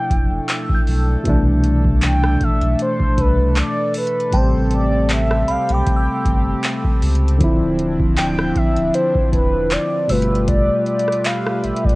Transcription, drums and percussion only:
0.10 kick medium
0.10 closed hi-hat medium
0.49 clap loud
0.49 closed hi-hat medium
0.69 kick loud
0.87 open hi-hat medium
1.25 kick loud
1.25 closed hi-hat medium
1.64 closed hi-hat medium
1.85 kick medium
2.02 clap loud
2.02 closed hi-hat medium
2.24 cross-stick loud
2.41 kick medium
2.41 closed hi-hat soft
2.61 closed hi-hat soft
2.79 closed hi-hat medium
3.00 kick loud
3.18 kick medium
3.18 closed hi-hat medium
3.56 clap loud
3.56 closed hi-hat medium
3.94 closed hi-hat medium
3.94 open hi-hat medium
4.07 closed hi-hat medium
4.20 closed hi-hat soft
4.32 kick loud
4.32 closed hi-hat medium
4.71 closed hi-hat medium
5.09 clap loud
5.09 closed hi-hat medium
5.31 cross-stick loud
5.48 closed hi-hat soft
5.69 closed hi-hat soft
5.87 kick loud
5.87 closed hi-hat medium
6.25 kick medium
6.25 closed hi-hat medium
6.64 clap loud
6.64 closed hi-hat medium
6.84 kick loud
7.02 closed hi-hat medium
7.02 open hi-hat medium
7.15 closed hi-hat medium
7.28 closed hi-hat soft
7.41 kick loud
7.41 closed hi-hat medium
7.79 closed hi-hat medium
8.00 kick medium
8.17 clap loud
8.17 closed hi-hat medium
8.39 cross-stick loud
8.56 kick medium
8.56 closed hi-hat soft
8.77 closed hi-hat soft
8.94 closed hi-hat medium
9.15 kick medium
9.33 kick medium
9.33 closed hi-hat medium
9.71 clap loud
9.71 closed hi-hat medium
10.09 closed hi-hat medium
10.09 open hi-hat medium
10.22 closed hi-hat medium
10.35 closed hi-hat soft
10.48 kick loud
10.48 closed hi-hat medium
10.86 closed hi-hat soft
10.99 closed hi-hat soft
11.08 cross-stick medium
11.12 closed hi-hat medium
11.25 clap loud
11.25 closed hi-hat medium
11.47 cross-stick loud
11.64 closed hi-hat soft
11.76 closed hi-hat soft
11.84 kick medium
11.89 closed hi-hat soft

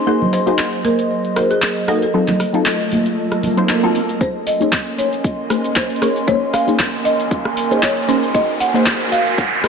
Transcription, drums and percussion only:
0.22 low conga medium
0.33 open hi-hat medium
0.47 closed hi-hat medium
0.58 clap loud
0.73 closed hi-hat soft
0.84 open hi-hat medium
0.84 high conga medium
0.99 closed hi-hat medium
1.25 closed hi-hat soft
1.36 cross-stick medium
1.36 open hi-hat medium
1.36 high conga medium
1.51 closed hi-hat medium
1.62 clap loud
1.76 closed hi-hat medium
1.88 cross-stick medium
1.88 open hi-hat medium
2.02 closed hi-hat medium
2.28 clap soft
2.28 closed hi-hat soft
2.28 high conga medium
2.28 low conga medium
2.40 cross-stick medium
2.40 open hi-hat medium
2.54 closed hi-hat medium
2.66 clap loud
2.80 closed hi-hat soft
2.92 open hi-hat medium
2.92 high conga medium
3.06 closed hi-hat medium
3.32 cross-stick medium
3.32 closed hi-hat soft
3.43 open hi-hat medium
3.43 high conga medium
3.43 low conga medium
3.57 closed hi-hat medium
3.69 clap loud
3.83 closed hi-hat soft
3.95 open hi-hat medium
4.09 closed hi-hat medium
4.21 kick loud
4.21 closed hi-hat medium
4.21 shaker soft
4.47 open hi-hat loud
4.47 shaker medium
4.61 closed hi-hat medium
4.61 shaker soft
4.72 kick loud
4.72 clap loud
4.72 closed hi-hat medium
4.72 shaker soft
4.87 closed hi-hat soft
4.99 open hi-hat medium
4.99 shaker medium
5.13 closed hi-hat medium
5.13 shaker soft
5.24 kick loud
5.24 closed hi-hat medium
5.24 shaker soft
5.50 cross-stick medium
5.50 open hi-hat loud
5.50 shaker medium
5.64 closed hi-hat medium
5.64 shaker soft
5.76 kick loud
5.76 clap loud
5.76 closed hi-hat medium
5.76 shaker soft
5.90 closed hi-hat soft
5.96 closed hi-hat medium
6.02 cross-stick medium
6.02 open hi-hat medium
6.02 shaker medium
6.16 closed hi-hat medium
6.16 shaker soft
6.28 kick loud
6.28 closed hi-hat medium
6.28 shaker soft
6.54 cross-stick medium
6.54 open hi-hat loud
6.54 shaker medium
6.68 closed hi-hat medium
6.68 shaker soft
6.79 kick loud
6.79 clap loud
6.79 closed hi-hat medium
6.79 shaker soft
6.94 closed hi-hat soft
7.05 open hi-hat medium
7.05 shaker medium
7.20 closed hi-hat medium
7.20 shaker soft
7.31 kick loud
7.31 closed hi-hat medium
7.31 shaker soft
7.45 cross-stick medium
7.57 open hi-hat loud
7.57 shaker medium
7.71 closed hi-hat medium
7.71 shaker soft
7.83 kick loud
7.83 clap loud
7.83 closed hi-hat medium
7.83 shaker soft
7.97 closed hi-hat soft
8.03 closed hi-hat medium
8.09 open hi-hat medium
8.09 shaker medium
8.23 closed hi-hat soft
8.23 shaker soft
8.35 kick loud
8.35 closed hi-hat medium
8.35 shaker soft
8.60 open hi-hat loud
8.60 shaker medium
8.75 closed hi-hat soft
8.75 shaker soft
8.86 kick loud
8.86 clap loud
8.86 closed hi-hat medium
8.86 shaker soft
9.01 closed hi-hat soft
9.12 open hi-hat medium
9.12 shaker medium
9.26 closed hi-hat medium
9.26 shaker soft
9.38 kick loud
9.38 closed hi-hat medium
9.38 shaker soft
9.64 cross-stick medium
9.64 open hi-hat loud
9.64 shaker medium

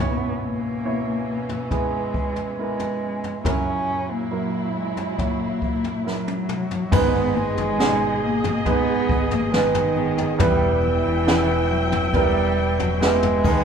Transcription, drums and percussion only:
1.49 floor tom soft
1.71 kick medium
1.71 floor tom medium
2.14 kick medium
2.36 floor tom soft
2.79 floor tom medium
3.24 floor tom soft
3.45 kick loud
3.45 floor tom medium
4.97 floor tom medium
5.19 kick medium
5.19 floor tom medium
5.62 kick medium
5.84 floor tom soft
6.07 snare soft
6.28 high tom soft
6.49 mid tom medium
6.71 floor tom medium
6.92 kick loud
6.92 floor tom loud
6.92 crash loud
7.57 floor tom medium
7.80 snare medium
8.44 floor tom medium
8.66 kick medium
8.66 floor tom medium
9.09 kick medium
9.31 floor tom medium
9.54 snare loud
9.75 floor tom medium
10.18 floor tom medium
10.40 kick loud
10.40 floor tom loud
11.28 snare loud
11.92 floor tom medium
12.14 kick medium
12.14 floor tom medium
12.79 floor tom medium
13.02 snare loud
13.23 floor tom medium
13.44 kick medium
13.44 crash medium

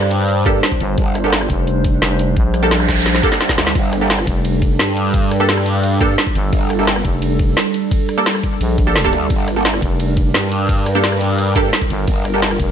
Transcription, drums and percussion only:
0.02 cross-stick soft
0.11 closed hi-hat loud
0.28 closed hi-hat medium
0.46 kick loud
0.46 closed hi-hat loud
0.63 snare loud
0.63 closed hi-hat medium
0.72 kick medium
0.80 closed hi-hat medium
0.98 kick loud
0.98 closed hi-hat medium
1.15 cross-stick soft
1.15 closed hi-hat medium
1.33 snare loud
1.33 closed hi-hat medium
1.41 cross-stick soft
1.50 kick medium
1.50 closed hi-hat loud
1.67 closed hi-hat medium
1.84 kick loud
1.84 closed hi-hat loud
2.02 snare loud
2.02 closed hi-hat medium
2.19 closed hi-hat medium
2.37 kick loud
2.37 closed hi-hat medium
2.54 cross-stick soft
2.54 closed hi-hat loud
2.71 snare loud
2.71 closed hi-hat medium
2.80 cross-stick soft
2.89 kick medium
2.89 snare soft
2.89 closed hi-hat loud
3.06 snare medium
3.06 closed hi-hat medium
3.15 snare medium
3.23 kick loud
3.23 closed hi-hat loud
3.32 snare medium
3.41 snare medium
3.41 closed hi-hat medium
3.49 kick medium
3.49 snare medium
3.58 snare loud
3.58 closed hi-hat medium
3.67 snare medium
3.75 kick loud
3.75 closed hi-hat medium
3.75 ride medium
3.93 cross-stick soft
3.93 closed hi-hat medium
4.10 snare loud
4.10 closed hi-hat medium
4.10 ride medium
4.19 cross-stick soft
4.27 kick medium
4.27 closed hi-hat loud
4.45 closed hi-hat medium
4.45 ride medium
4.62 kick loud
4.62 closed hi-hat loud
4.79 snare loud
4.79 closed hi-hat medium
4.79 ride medium
4.97 closed hi-hat medium
5.14 kick loud
5.14 closed hi-hat medium
5.14 ride medium
5.31 cross-stick soft
5.31 closed hi-hat medium
5.49 snare loud
5.49 closed hi-hat medium
5.49 ride medium
5.57 cross-stick soft
5.66 closed hi-hat loud
5.83 closed hi-hat medium
5.83 ride medium
6.01 kick loud
6.01 closed hi-hat loud
6.18 snare loud
6.18 closed hi-hat medium
6.18 ride medium
6.27 kick medium
6.35 closed hi-hat medium
6.53 kick loud
6.53 closed hi-hat medium
6.53 ride medium
6.70 cross-stick soft
6.70 closed hi-hat medium
6.87 snare loud
6.87 closed hi-hat medium
6.87 ride medium
6.96 cross-stick soft
7.05 kick medium
7.05 closed hi-hat loud
7.22 closed hi-hat medium
7.22 ride medium
7.39 kick loud
7.39 closed hi-hat medium
7.57 snare loud
7.57 closed hi-hat medium
7.57 ride medium
7.74 closed hi-hat medium
7.91 kick loud
7.91 closed hi-hat medium
7.91 ride medium
8.09 cross-stick soft
8.09 closed hi-hat medium
8.26 snare loud
8.26 closed hi-hat medium
8.26 ride medium
8.35 cross-stick soft
8.43 kick medium
8.43 closed hi-hat medium
8.61 closed hi-hat medium
8.61 ride medium
8.78 kick loud
8.78 closed hi-hat loud
8.96 snare loud
8.96 closed hi-hat medium
8.96 ride medium
9.04 kick medium
9.13 closed hi-hat medium
9.30 kick loud
9.30 closed hi-hat medium
9.30 ride medium
9.48 cross-stick soft
9.48 closed hi-hat medium
9.65 snare loud
9.65 closed hi-hat medium
9.65 ride medium
9.74 cross-stick soft
9.82 kick medium
9.82 closed hi-hat medium
10.00 closed hi-hat medium
10.00 ride medium
10.17 kick loud
10.17 closed hi-hat medium
10.34 snare loud
10.34 closed hi-hat medium
10.34 ride medium
10.52 closed hi-hat medium
10.69 kick loud
10.69 closed hi-hat medium
10.69 ride medium
10.86 cross-stick soft
10.86 closed hi-hat medium
11.04 snare loud
11.04 closed hi-hat medium
11.04 ride medium
11.12 cross-stick soft
11.21 closed hi-hat loud
11.38 closed hi-hat medium
11.38 ride medium
11.56 kick loud
11.56 closed hi-hat medium
11.73 snare loud
11.73 closed hi-hat medium
11.73 ride medium
11.82 kick medium
11.90 closed hi-hat medium
12.08 kick loud
12.08 closed hi-hat medium
12.08 ride medium
12.25 cross-stick soft
12.25 closed hi-hat medium
12.42 snare loud
12.42 closed hi-hat medium
12.42 ride medium
12.51 cross-stick soft
12.60 kick medium
12.60 closed hi-hat loud

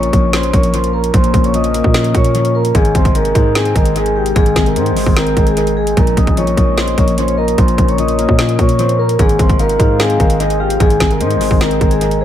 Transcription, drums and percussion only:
0.03 closed hi-hat medium
0.13 kick medium
0.13 closed hi-hat medium
0.33 snare loud
0.33 closed hi-hat medium
0.43 closed hi-hat medium
0.53 kick loud
0.53 closed hi-hat medium
0.63 closed hi-hat medium
0.74 closed hi-hat medium
0.84 closed hi-hat medium
1.04 closed hi-hat medium
1.14 kick loud
1.14 closed hi-hat medium
1.24 closed hi-hat medium
1.34 kick loud
1.34 closed hi-hat medium
1.44 closed hi-hat medium
1.54 closed hi-hat medium
1.64 closed hi-hat medium
1.74 closed hi-hat medium
1.84 kick medium
1.94 snare loud
1.94 closed hi-hat medium
2.04 closed hi-hat medium
2.14 kick loud
2.14 closed hi-hat medium
2.24 closed hi-hat medium
2.35 closed hi-hat medium
2.45 closed hi-hat medium
2.65 closed hi-hat medium
2.75 kick loud
2.75 closed hi-hat medium
2.85 closed hi-hat medium
2.95 kick medium
2.95 closed hi-hat medium
3.05 kick loud
3.05 closed hi-hat medium
3.15 closed hi-hat medium
3.25 closed hi-hat medium
3.35 kick medium
3.35 closed hi-hat medium
3.55 snare loud
3.55 closed hi-hat medium
3.65 closed hi-hat medium
3.76 kick loud
3.76 closed hi-hat medium
3.85 closed hi-hat medium
3.96 closed hi-hat medium
4.06 closed hi-hat medium
4.26 closed hi-hat medium
4.36 kick loud
4.36 closed hi-hat medium
4.46 closed hi-hat medium
4.56 kick loud
4.56 snare loud
4.56 closed hi-hat medium
4.66 closed hi-hat soft
4.76 closed hi-hat medium
4.86 closed hi-hat medium
4.97 open hi-hat medium
5.06 kick medium
5.17 snare loud
5.17 closed hi-hat medium
5.27 closed hi-hat medium
5.37 kick loud
5.37 closed hi-hat medium
5.47 closed hi-hat medium
5.57 closed hi-hat medium
5.67 closed hi-hat medium
5.87 closed hi-hat medium
5.97 kick loud
5.97 closed hi-hat medium
6.07 closed hi-hat medium
6.17 kick medium
6.17 closed hi-hat medium
6.27 kick loud
6.27 closed hi-hat soft
6.37 closed hi-hat medium
6.47 closed hi-hat medium
6.57 kick medium
6.57 closed hi-hat medium
6.78 snare loud
6.78 closed hi-hat medium
6.88 closed hi-hat medium
6.98 kick loud
6.98 closed hi-hat medium
7.08 closed hi-hat medium
7.18 closed hi-hat medium
7.28 closed hi-hat medium
7.48 closed hi-hat medium
7.58 kick loud
7.58 closed hi-hat medium
7.68 closed hi-hat medium
7.78 kick loud
7.78 closed hi-hat medium
7.88 closed hi-hat soft
7.98 closed hi-hat medium
8.08 closed hi-hat medium
8.19 closed hi-hat medium
8.29 kick medium
8.39 snare loud
8.39 closed hi-hat medium
8.49 closed hi-hat medium
8.59 kick loud
8.59 closed hi-hat medium
8.69 closed hi-hat medium
8.79 closed hi-hat medium
8.89 closed hi-hat medium
9.09 closed hi-hat medium
9.19 kick loud
9.19 closed hi-hat medium
9.29 closed hi-hat medium
9.39 kick loud
9.39 closed hi-hat medium
9.49 kick loud
9.49 closed hi-hat medium
9.59 closed hi-hat medium
9.69 closed hi-hat medium
9.80 kick medium
9.80 closed hi-hat medium
10.00 snare loud
10.00 closed hi-hat medium
10.10 closed hi-hat medium
10.20 kick loud
10.20 closed hi-hat medium
10.30 closed hi-hat medium
10.40 closed hi-hat medium
10.50 closed hi-hat medium
10.70 closed hi-hat medium
10.80 kick loud
10.80 closed hi-hat medium
10.90 closed hi-hat medium
11.00 kick loud
11.00 snare loud
11.00 closed hi-hat medium
11.11 closed hi-hat soft
11.21 closed hi-hat medium
11.31 closed hi-hat medium
11.41 open hi-hat medium
11.51 kick medium
11.61 snare loud
11.61 closed hi-hat medium
11.71 closed hi-hat medium
11.81 kick loud
11.81 closed hi-hat medium
11.91 closed hi-hat medium
12.01 closed hi-hat medium
12.11 closed hi-hat medium

